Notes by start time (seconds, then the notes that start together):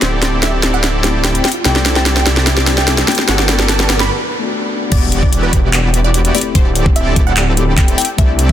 Already playing: riser
0.00 D1 A3 C4 E4 G4 A4 C5 D5 F#5, snare, closed hi-hat
0.22 snare, closed hi-hat
0.43 E5, snare, closed hi-hat
0.63 D1 C4 E4 G4 A4 D5, snare, closed hi-hat
0.74 F#5
0.84 snare, closed hi-hat
1.03 A3 C4 E4 G4, snare, closed hi-hat
1.24 G5, snare, closed hi-hat
1.35 closed hi-hat
1.45 G5, snare, closed hi-hat
1.48 closed hi-hat
1.52 closed hi-hat
1.63 C2 A3 C4 D4 E4 G4 A4 D5 G5, snare, closed hi-hat
1.67 G4
1.76 snare
1.86 snare, closed hi-hat
1.96 G5, snare
2.06 snare, closed hi-hat
2.17 G5, snare
2.26 C2 C4 E4 G4 A4 D5, snare, closed hi-hat
2.37 snare
2.47 snare, closed hi-hat
2.57 snare
2.67 snare, closed hi-hat
2.78 G5, snare
2.88 snare, closed hi-hat
2.98 snare, closed hi-hat
3.07 A3 B3 D4 F#4 G5, snare, closed hi-hat
3.12 closed hi-hat
3.15 snare, closed hi-hat
3.26 G1 A3 B3 D4 F#4 G4 A4 D5 F#5, snare, closed hi-hat
3.30 E4
3.39 snare
3.49 snare, closed hi-hat
3.59 snare
3.69 A5, snare, closed hi-hat
3.80 snare
3.90 G1 B3 F#4 G4 A4 D5, snare, closed hi-hat
4.00 B5, snare
4.39 A3 B3 D4
4.43 F#4
4.90 E1 G3 B3 D4 E4 F#4 G4 D5 F#5, kick, closed hi-hat, crash, impact
5.12 closed hi-hat
5.23 D5, kick
5.33 closed hi-hat
5.43 B4
5.53 E1 B3 G4, kick, closed hi-hat
5.73 clap, closed hi-hat
5.94 closed hi-hat
6.04 D5
6.14 closed hi-hat
6.25 closed hi-hat
6.34 A3 C4 E4 G4 D5, open hi-hat
6.38 closed hi-hat
6.41 closed hi-hat
6.53 D1 A3 C4 E4 G4 A4 C5 D5 F#5, kick, closed hi-hat
6.75 closed hi-hat
6.86 kick
6.96 E5, closed hi-hat
7.16 C4 E4 G4 A4 D5, kick, closed hi-hat
7.27 F#5
7.37 clap, closed hi-hat
7.56 A3 C4 E4 G4, closed hi-hat
7.77 G5, kick, clap, closed hi-hat
7.88 closed hi-hat
7.98 G5, closed hi-hat, open hi-hat
8.05 closed hi-hat
8.16 C2 A3 C4 D4 E4 G4 A4 D5 E5, kick, closed hi-hat
8.20 G4
8.39 closed hi-hat